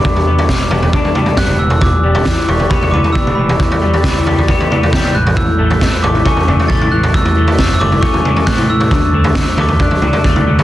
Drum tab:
SD |----o-------o---|----o-----------|----o-------o---|----o-----------|
T2 |----------o--o--|----------o--o--|----------o--o--|----------o--o--|
FT |oo-o--oooo-oo--o|o--o--oooo-o---o|oo-o--oooo-oo--o|o--o--oooo-o---o|
BD |o---o---o---o---|o---o---o---o---|o---o---o---o---|o---o---o---o---|

SD |----o-------o---|----o-----------|
T2 |----------o--o--|----------o--o--|
FT |oo-o--oooo-oo--o|o--o--oooo-o---o|
BD |o---o---o---o---|o---o---o---o---|